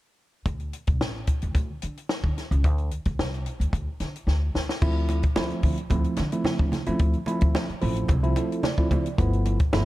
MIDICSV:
0, 0, Header, 1, 5, 480
1, 0, Start_track
1, 0, Tempo, 545455
1, 403, Time_signature, 4, 2, 24, 8
1, 8668, End_track
2, 0, Start_track
2, 0, Title_t, "Tine electric piano"
2, 0, Program_c, 0, 4
2, 4237, Note_on_c, 0, 57, 86
2, 4237, Note_on_c, 0, 60, 91
2, 4238, Note_on_c, 0, 53, 90
2, 4241, Note_on_c, 0, 64, 113
2, 4597, Note_off_c, 0, 53, 0
2, 4597, Note_off_c, 0, 57, 0
2, 4597, Note_off_c, 0, 60, 0
2, 4599, Note_off_c, 0, 64, 0
2, 4718, Note_on_c, 0, 53, 100
2, 4718, Note_on_c, 0, 60, 85
2, 4719, Note_on_c, 0, 57, 80
2, 4720, Note_on_c, 0, 64, 102
2, 5077, Note_off_c, 0, 53, 0
2, 5077, Note_off_c, 0, 60, 0
2, 5078, Note_off_c, 0, 57, 0
2, 5078, Note_off_c, 0, 64, 0
2, 5199, Note_on_c, 0, 64, 78
2, 5201, Note_on_c, 0, 53, 80
2, 5202, Note_on_c, 0, 57, 72
2, 5203, Note_on_c, 0, 60, 78
2, 5465, Note_off_c, 0, 64, 0
2, 5466, Note_off_c, 0, 53, 0
2, 5466, Note_off_c, 0, 57, 0
2, 5467, Note_off_c, 0, 60, 0
2, 5565, Note_on_c, 0, 57, 75
2, 5565, Note_on_c, 0, 60, 67
2, 5567, Note_on_c, 0, 53, 75
2, 5567, Note_on_c, 0, 64, 88
2, 5910, Note_off_c, 0, 57, 0
2, 5910, Note_off_c, 0, 60, 0
2, 5911, Note_off_c, 0, 53, 0
2, 5911, Note_off_c, 0, 64, 0
2, 6043, Note_on_c, 0, 64, 105
2, 6045, Note_on_c, 0, 53, 94
2, 6046, Note_on_c, 0, 60, 81
2, 6048, Note_on_c, 0, 57, 83
2, 6307, Note_off_c, 0, 64, 0
2, 6308, Note_off_c, 0, 53, 0
2, 6308, Note_off_c, 0, 60, 0
2, 6310, Note_off_c, 0, 57, 0
2, 6397, Note_on_c, 0, 60, 80
2, 6399, Note_on_c, 0, 53, 92
2, 6399, Note_on_c, 0, 57, 85
2, 6399, Note_on_c, 0, 64, 104
2, 6755, Note_off_c, 0, 60, 0
2, 6756, Note_off_c, 0, 53, 0
2, 6756, Note_off_c, 0, 57, 0
2, 6756, Note_off_c, 0, 64, 0
2, 6875, Note_on_c, 0, 57, 84
2, 6877, Note_on_c, 0, 53, 94
2, 6877, Note_on_c, 0, 60, 82
2, 6879, Note_on_c, 0, 64, 95
2, 7142, Note_off_c, 0, 53, 0
2, 7142, Note_off_c, 0, 57, 0
2, 7142, Note_off_c, 0, 60, 0
2, 7143, Note_off_c, 0, 64, 0
2, 7241, Note_on_c, 0, 57, 78
2, 7244, Note_on_c, 0, 53, 100
2, 7245, Note_on_c, 0, 60, 85
2, 7245, Note_on_c, 0, 64, 102
2, 7362, Note_on_c, 0, 69, 72
2, 7585, Note_off_c, 0, 69, 0
2, 7587, Note_off_c, 0, 57, 0
2, 7589, Note_off_c, 0, 53, 0
2, 7589, Note_off_c, 0, 60, 0
2, 7590, Note_off_c, 0, 64, 0
2, 7596, Note_on_c, 0, 74, 74
2, 7722, Note_on_c, 0, 53, 89
2, 7723, Note_on_c, 0, 60, 79
2, 7724, Note_on_c, 0, 57, 72
2, 7724, Note_on_c, 0, 64, 89
2, 7986, Note_off_c, 0, 53, 0
2, 7986, Note_off_c, 0, 60, 0
2, 7987, Note_off_c, 0, 57, 0
2, 7987, Note_off_c, 0, 64, 0
2, 8045, Note_off_c, 0, 74, 0
2, 8078, Note_on_c, 0, 57, 96
2, 8078, Note_on_c, 0, 59, 98
2, 8079, Note_on_c, 0, 53, 92
2, 8079, Note_on_c, 0, 64, 101
2, 8435, Note_off_c, 0, 57, 0
2, 8435, Note_off_c, 0, 59, 0
2, 8436, Note_off_c, 0, 53, 0
2, 8436, Note_off_c, 0, 64, 0
2, 8560, Note_on_c, 0, 59, 81
2, 8561, Note_on_c, 0, 53, 92
2, 8563, Note_on_c, 0, 64, 102
2, 8564, Note_on_c, 0, 57, 90
2, 8668, Note_off_c, 0, 53, 0
2, 8668, Note_off_c, 0, 57, 0
2, 8668, Note_off_c, 0, 59, 0
2, 8668, Note_off_c, 0, 64, 0
2, 8668, End_track
3, 0, Start_track
3, 0, Title_t, "Upright bass"
3, 0, Program_c, 1, 32
3, 402, Note_on_c, 1, 38, 89
3, 619, Note_off_c, 1, 38, 0
3, 770, Note_on_c, 1, 36, 78
3, 886, Note_off_c, 1, 36, 0
3, 886, Note_on_c, 1, 33, 74
3, 1101, Note_off_c, 1, 33, 0
3, 1256, Note_on_c, 1, 38, 79
3, 1356, Note_off_c, 1, 38, 0
3, 1359, Note_on_c, 1, 38, 96
3, 1477, Note_off_c, 1, 38, 0
3, 1613, Note_on_c, 1, 50, 68
3, 1724, Note_off_c, 1, 50, 0
3, 1970, Note_on_c, 1, 50, 80
3, 2073, Note_off_c, 1, 50, 0
3, 2209, Note_on_c, 1, 37, 93
3, 2325, Note_off_c, 1, 37, 0
3, 2325, Note_on_c, 1, 38, 96
3, 2542, Note_off_c, 1, 38, 0
3, 2693, Note_on_c, 1, 38, 90
3, 2795, Note_off_c, 1, 38, 0
3, 2808, Note_on_c, 1, 36, 81
3, 3023, Note_off_c, 1, 36, 0
3, 3166, Note_on_c, 1, 38, 82
3, 3271, Note_off_c, 1, 38, 0
3, 3282, Note_on_c, 1, 38, 90
3, 3399, Note_off_c, 1, 38, 0
3, 3523, Note_on_c, 1, 50, 81
3, 3639, Note_off_c, 1, 50, 0
3, 3756, Note_on_c, 1, 38, 92
3, 3976, Note_off_c, 1, 38, 0
3, 4001, Note_on_c, 1, 38, 72
3, 4118, Note_off_c, 1, 38, 0
3, 4244, Note_on_c, 1, 38, 98
3, 4575, Note_off_c, 1, 38, 0
3, 4721, Note_on_c, 1, 38, 74
3, 4837, Note_off_c, 1, 38, 0
3, 4955, Note_on_c, 1, 50, 94
3, 5074, Note_off_c, 1, 50, 0
3, 5196, Note_on_c, 1, 38, 90
3, 5314, Note_off_c, 1, 38, 0
3, 5448, Note_on_c, 1, 50, 89
3, 5561, Note_off_c, 1, 50, 0
3, 5803, Note_on_c, 1, 50, 84
3, 5908, Note_off_c, 1, 50, 0
3, 6048, Note_on_c, 1, 37, 94
3, 6150, Note_off_c, 1, 37, 0
3, 6159, Note_on_c, 1, 38, 102
3, 6275, Note_off_c, 1, 38, 0
3, 6525, Note_on_c, 1, 38, 90
3, 6628, Note_off_c, 1, 38, 0
3, 6887, Note_on_c, 1, 33, 93
3, 7101, Note_off_c, 1, 33, 0
3, 7117, Note_on_c, 1, 36, 103
3, 7335, Note_off_c, 1, 36, 0
3, 8082, Note_on_c, 1, 31, 96
3, 8412, Note_off_c, 1, 31, 0
3, 8559, Note_on_c, 1, 31, 86
3, 8668, Note_off_c, 1, 31, 0
3, 8668, End_track
4, 0, Start_track
4, 0, Title_t, "Muted upright bass strokes"
4, 6770, Note_on_c, 9, 29, 41
4, 6858, Note_off_c, 9, 29, 0
4, 8668, End_track
5, 0, Start_track
5, 0, Title_t, "Drums"
5, 401, Note_on_c, 9, 42, 85
5, 402, Note_on_c, 9, 36, 111
5, 489, Note_off_c, 9, 42, 0
5, 490, Note_off_c, 9, 36, 0
5, 524, Note_on_c, 9, 42, 33
5, 612, Note_off_c, 9, 42, 0
5, 643, Note_on_c, 9, 42, 67
5, 731, Note_off_c, 9, 42, 0
5, 765, Note_on_c, 9, 42, 50
5, 772, Note_on_c, 9, 36, 92
5, 853, Note_off_c, 9, 42, 0
5, 860, Note_off_c, 9, 36, 0
5, 889, Note_on_c, 9, 38, 107
5, 977, Note_off_c, 9, 38, 0
5, 1119, Note_on_c, 9, 42, 69
5, 1123, Note_on_c, 9, 36, 81
5, 1207, Note_off_c, 9, 42, 0
5, 1211, Note_off_c, 9, 36, 0
5, 1247, Note_on_c, 9, 42, 46
5, 1335, Note_off_c, 9, 42, 0
5, 1361, Note_on_c, 9, 36, 89
5, 1362, Note_on_c, 9, 42, 77
5, 1449, Note_off_c, 9, 36, 0
5, 1450, Note_off_c, 9, 42, 0
5, 1600, Note_on_c, 9, 42, 74
5, 1688, Note_off_c, 9, 42, 0
5, 1737, Note_on_c, 9, 42, 46
5, 1825, Note_off_c, 9, 42, 0
5, 1842, Note_on_c, 9, 38, 98
5, 1930, Note_off_c, 9, 38, 0
5, 1968, Note_on_c, 9, 36, 77
5, 2056, Note_off_c, 9, 36, 0
5, 2091, Note_on_c, 9, 42, 52
5, 2093, Note_on_c, 9, 38, 36
5, 2179, Note_off_c, 9, 42, 0
5, 2181, Note_off_c, 9, 38, 0
5, 2216, Note_on_c, 9, 42, 53
5, 2304, Note_off_c, 9, 42, 0
5, 2325, Note_on_c, 9, 36, 103
5, 2325, Note_on_c, 9, 42, 88
5, 2413, Note_off_c, 9, 36, 0
5, 2413, Note_off_c, 9, 42, 0
5, 2447, Note_on_c, 9, 42, 30
5, 2535, Note_off_c, 9, 42, 0
5, 2563, Note_on_c, 9, 42, 68
5, 2651, Note_off_c, 9, 42, 0
5, 2687, Note_on_c, 9, 42, 52
5, 2692, Note_on_c, 9, 36, 86
5, 2775, Note_off_c, 9, 42, 0
5, 2780, Note_off_c, 9, 36, 0
5, 2810, Note_on_c, 9, 38, 107
5, 2898, Note_off_c, 9, 38, 0
5, 2938, Note_on_c, 9, 42, 32
5, 3026, Note_off_c, 9, 42, 0
5, 3044, Note_on_c, 9, 42, 72
5, 3132, Note_off_c, 9, 42, 0
5, 3176, Note_on_c, 9, 42, 55
5, 3264, Note_off_c, 9, 42, 0
5, 3282, Note_on_c, 9, 36, 96
5, 3290, Note_on_c, 9, 42, 80
5, 3370, Note_off_c, 9, 36, 0
5, 3378, Note_off_c, 9, 42, 0
5, 3520, Note_on_c, 9, 42, 74
5, 3525, Note_on_c, 9, 38, 37
5, 3608, Note_off_c, 9, 42, 0
5, 3613, Note_off_c, 9, 38, 0
5, 3657, Note_on_c, 9, 42, 45
5, 3745, Note_off_c, 9, 42, 0
5, 3763, Note_on_c, 9, 38, 45
5, 3851, Note_off_c, 9, 38, 0
5, 4006, Note_on_c, 9, 38, 77
5, 4094, Note_off_c, 9, 38, 0
5, 4130, Note_on_c, 9, 38, 73
5, 4218, Note_off_c, 9, 38, 0
5, 4241, Note_on_c, 9, 36, 119
5, 4241, Note_on_c, 9, 49, 87
5, 4329, Note_off_c, 9, 36, 0
5, 4329, Note_off_c, 9, 49, 0
5, 4476, Note_on_c, 9, 62, 51
5, 4483, Note_on_c, 9, 42, 73
5, 4564, Note_off_c, 9, 62, 0
5, 4571, Note_off_c, 9, 42, 0
5, 4601, Note_on_c, 9, 42, 45
5, 4608, Note_on_c, 9, 36, 89
5, 4689, Note_off_c, 9, 42, 0
5, 4696, Note_off_c, 9, 36, 0
5, 4715, Note_on_c, 9, 63, 81
5, 4717, Note_on_c, 9, 38, 121
5, 4803, Note_off_c, 9, 63, 0
5, 4805, Note_off_c, 9, 38, 0
5, 4840, Note_on_c, 9, 42, 33
5, 4928, Note_off_c, 9, 42, 0
5, 4953, Note_on_c, 9, 46, 68
5, 4958, Note_on_c, 9, 36, 77
5, 5041, Note_off_c, 9, 46, 0
5, 5046, Note_off_c, 9, 36, 0
5, 5082, Note_on_c, 9, 42, 51
5, 5170, Note_off_c, 9, 42, 0
5, 5190, Note_on_c, 9, 62, 32
5, 5190, Note_on_c, 9, 64, 75
5, 5196, Note_on_c, 9, 42, 82
5, 5197, Note_on_c, 9, 36, 91
5, 5278, Note_off_c, 9, 62, 0
5, 5278, Note_off_c, 9, 64, 0
5, 5284, Note_off_c, 9, 42, 0
5, 5285, Note_off_c, 9, 36, 0
5, 5317, Note_on_c, 9, 42, 34
5, 5405, Note_off_c, 9, 42, 0
5, 5425, Note_on_c, 9, 42, 84
5, 5430, Note_on_c, 9, 38, 35
5, 5432, Note_on_c, 9, 62, 60
5, 5513, Note_off_c, 9, 42, 0
5, 5518, Note_off_c, 9, 38, 0
5, 5520, Note_off_c, 9, 62, 0
5, 5561, Note_on_c, 9, 42, 51
5, 5649, Note_off_c, 9, 42, 0
5, 5670, Note_on_c, 9, 63, 82
5, 5680, Note_on_c, 9, 38, 87
5, 5758, Note_off_c, 9, 63, 0
5, 5768, Note_off_c, 9, 38, 0
5, 5802, Note_on_c, 9, 36, 82
5, 5890, Note_off_c, 9, 36, 0
5, 5912, Note_on_c, 9, 63, 74
5, 5919, Note_on_c, 9, 42, 59
5, 5920, Note_on_c, 9, 38, 32
5, 6000, Note_off_c, 9, 63, 0
5, 6007, Note_off_c, 9, 42, 0
5, 6008, Note_off_c, 9, 38, 0
5, 6039, Note_on_c, 9, 42, 49
5, 6127, Note_off_c, 9, 42, 0
5, 6153, Note_on_c, 9, 42, 83
5, 6158, Note_on_c, 9, 36, 117
5, 6241, Note_off_c, 9, 42, 0
5, 6246, Note_off_c, 9, 36, 0
5, 6277, Note_on_c, 9, 42, 35
5, 6365, Note_off_c, 9, 42, 0
5, 6390, Note_on_c, 9, 62, 54
5, 6402, Note_on_c, 9, 42, 64
5, 6478, Note_off_c, 9, 62, 0
5, 6490, Note_off_c, 9, 42, 0
5, 6518, Note_on_c, 9, 42, 52
5, 6529, Note_on_c, 9, 36, 97
5, 6606, Note_off_c, 9, 42, 0
5, 6617, Note_off_c, 9, 36, 0
5, 6642, Note_on_c, 9, 63, 81
5, 6643, Note_on_c, 9, 38, 113
5, 6730, Note_off_c, 9, 63, 0
5, 6731, Note_off_c, 9, 38, 0
5, 6770, Note_on_c, 9, 42, 33
5, 6858, Note_off_c, 9, 42, 0
5, 6875, Note_on_c, 9, 46, 74
5, 6963, Note_off_c, 9, 46, 0
5, 7007, Note_on_c, 9, 42, 50
5, 7095, Note_off_c, 9, 42, 0
5, 7114, Note_on_c, 9, 62, 32
5, 7114, Note_on_c, 9, 64, 73
5, 7119, Note_on_c, 9, 36, 100
5, 7120, Note_on_c, 9, 42, 89
5, 7202, Note_off_c, 9, 62, 0
5, 7202, Note_off_c, 9, 64, 0
5, 7207, Note_off_c, 9, 36, 0
5, 7208, Note_off_c, 9, 42, 0
5, 7246, Note_on_c, 9, 42, 35
5, 7334, Note_off_c, 9, 42, 0
5, 7357, Note_on_c, 9, 62, 58
5, 7360, Note_on_c, 9, 42, 78
5, 7445, Note_off_c, 9, 62, 0
5, 7448, Note_off_c, 9, 42, 0
5, 7497, Note_on_c, 9, 42, 46
5, 7585, Note_off_c, 9, 42, 0
5, 7597, Note_on_c, 9, 63, 86
5, 7602, Note_on_c, 9, 38, 99
5, 7685, Note_off_c, 9, 63, 0
5, 7690, Note_off_c, 9, 38, 0
5, 7725, Note_on_c, 9, 36, 74
5, 7813, Note_off_c, 9, 36, 0
5, 7840, Note_on_c, 9, 36, 73
5, 7840, Note_on_c, 9, 42, 56
5, 7846, Note_on_c, 9, 63, 86
5, 7928, Note_off_c, 9, 36, 0
5, 7928, Note_off_c, 9, 42, 0
5, 7934, Note_off_c, 9, 63, 0
5, 7970, Note_on_c, 9, 42, 48
5, 8058, Note_off_c, 9, 42, 0
5, 8082, Note_on_c, 9, 36, 117
5, 8084, Note_on_c, 9, 42, 88
5, 8170, Note_off_c, 9, 36, 0
5, 8172, Note_off_c, 9, 42, 0
5, 8211, Note_on_c, 9, 42, 34
5, 8299, Note_off_c, 9, 42, 0
5, 8320, Note_on_c, 9, 42, 73
5, 8322, Note_on_c, 9, 62, 45
5, 8408, Note_off_c, 9, 42, 0
5, 8410, Note_off_c, 9, 62, 0
5, 8443, Note_on_c, 9, 42, 50
5, 8449, Note_on_c, 9, 36, 97
5, 8531, Note_off_c, 9, 42, 0
5, 8537, Note_off_c, 9, 36, 0
5, 8562, Note_on_c, 9, 38, 115
5, 8564, Note_on_c, 9, 63, 83
5, 8650, Note_off_c, 9, 38, 0
5, 8652, Note_off_c, 9, 63, 0
5, 8668, End_track
0, 0, End_of_file